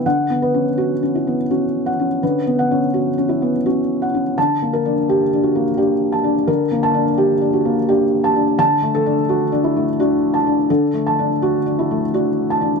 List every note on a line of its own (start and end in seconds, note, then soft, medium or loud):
0.06 2.18 D3 medium
0.06 0.64 F#5 medium
0.30 0.69 B3 soft
0.42 1.00 B4 medium
0.54 0.93 C#4 soft
0.78 1.36 F#4 medium
1.03 1.41 C#4 soft
1.15 1.51 E4 soft
1.27 1.65 B3 soft
1.50 1.88 C#4 soft
1.50 2.08 F#4 medium
1.86 2.43 F#5 medium
1.99 2.37 C#4 soft
2.23 4.33 D3 medium
2.23 2.80 B4 medium
2.47 2.84 B3 soft
2.59 3.16 F#5 medium
2.71 3.09 C#4 soft
2.94 3.51 F#4 medium
3.18 3.56 C#4 soft
3.29 3.65 E4 soft
3.42 3.80 B3 soft
3.66 4.04 C#4 soft
3.66 4.23 F#4 medium
4.02 4.37 F#5 medium
4.14 4.37 C#4 soft
4.38 6.45 D3 medium
4.38 4.94 A5 medium
4.62 4.99 A#3 soft
4.73 5.29 A#4 medium
4.85 5.22 D4 medium
5.09 5.64 G4 medium
5.33 5.69 D4 soft
5.43 5.78 F#4 soft
5.55 5.92 A#3 soft
5.77 6.15 D4 medium
5.77 6.34 G4 medium
6.12 6.69 A5 medium
6.24 6.62 D4 medium
6.47 8.54 D3 medium
6.47 7.04 A#4 medium
6.72 7.09 A#3 medium
6.83 7.39 A5 medium
6.94 7.32 D4 medium
7.18 7.74 G4 medium
7.41 7.79 D4 medium
7.53 7.88 F#4 medium
7.65 8.02 A#3 soft
7.88 8.26 D4 medium
7.88 8.45 G4 medium
8.24 8.57 A5 medium
8.36 8.59 D4 medium
8.59 10.65 D3 medium
8.59 9.15 A5 medium
8.82 9.20 A3 medium
8.95 9.50 A4 medium
9.06 9.43 D4 medium
9.29 9.84 F#4 medium
9.52 9.89 D4 medium
9.64 9.98 E4 medium
9.76 10.13 A3 medium
9.99 10.36 D4 medium
9.99 10.55 F#4 medium
10.34 10.91 A5 medium
10.47 10.84 D4 medium
10.70 12.80 D3 medium
10.70 11.27 A4 medium
10.94 11.32 A3 medium
11.06 11.63 A5 medium
11.19 11.56 D4 medium
11.42 11.99 F#4 medium
11.66 12.04 D4 medium
11.79 12.14 E4 medium
11.91 12.28 A3 medium
12.14 12.52 D4 medium
12.14 12.71 F#4 medium
12.50 12.80 A5 medium
12.61 12.80 D4 medium